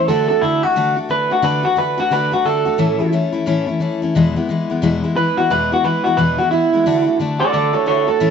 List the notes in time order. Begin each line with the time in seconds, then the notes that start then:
0.08 D3 A3 D4 F#4 A4
0.28 A3 D4 F#4 A4
0.42 D3 A3 D4 E4 F#4
0.63 A3 D4 F#4
0.76 D3 A3 D4 F#4
0.96 A3 D4 F#4
1.09 D3 A3 D4 F#4 B4
1.30 A3 D4 F#4
1.42 D3 A3 D4 F#4 B4
1.63 A3 D4 F#4
1.76 D3 A3 D4 F#4 B4
1.97 A3 D4 F#4
2.11 D3 A3 D4 F#4 B4
2.32 A3 D4 F#4
2.45 D3 A3 D4 F#4 A4
2.65 A3 D4 F#4
2.78 A2 E3 A3 C#4 E4
2.98 A3 C#4 E4
3.12 E3 A3 C#4 E4
3.32 A3 C#4 E4
3.46 A2 E3 A3 C#4 E4
3.66 A3 C#4 E4
3.80 E3 A3 C#4 E4
4.02 A3 C#4 E4
4.15 E2 B2 E3 G#3 B3 E4
4.36 E3 G#3 B3 E4
4.49 E3 G#3 B3 E4
4.70 E3 G#3 B3 E4
4.82 E2 B2 E3 G#3 B3 E4
5.03 E3 G#3 B3 E4
5.16 E3 G#3 B3 E4 B4
5.37 E3 G#3 B3 E4 F#4
5.50 E2 B2 E3 G#3 B3 E4 B4
5.72 E3 G#3 B3 E4 F#4
5.84 E3 G#3 B3 E4 B4
6.04 E3 G#3 B3 E4 F#4
6.17 E2 B2 E3 G#3 B3 E4 B4
6.38 E3 G#3 B3 E4 F#4
6.51 E3 G#3 B3 E4
6.73 E3 G#3 B3 E4
6.86 D3 A3 D4 F#4
7.07 A3 D4 F#4
7.19 D3 A3 D4 F#4
7.40 A3 D4 F#4 A4 D5
7.52 D3 A3 D4 F#4 A4 D5
7.73 A3 D4 F#4 A4 C#5
7.86 D3 A3 D4 F#4 A4 C#5
8.07 A3 D4 F#4 A4
8.20 A2 E3 A3 C#4 E4